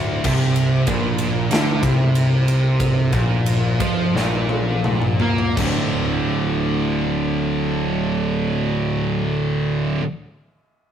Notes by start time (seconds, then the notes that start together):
Already playing: D1 D2
0.24 C2 C3, kick, crash
0.56 ride
0.87 A#1 A#2, kick, ride
1.18 ride
1.50 D2 D3, snare, ride
1.82 C2 C3, kick, ride
2.15 ride
2.48 ride
2.80 kick, ride
3.12 A#1 A#2, kick, ride
3.46 ride
3.79 F2 F3, kick, ride
4.13 A#1 A#2, snare
4.49 high tom
4.84 mid tom
5.02 mid tom
5.19 A#2 A#3, floor tom
5.38 floor tom
5.55 D1 D2 A2 D3, kick, crash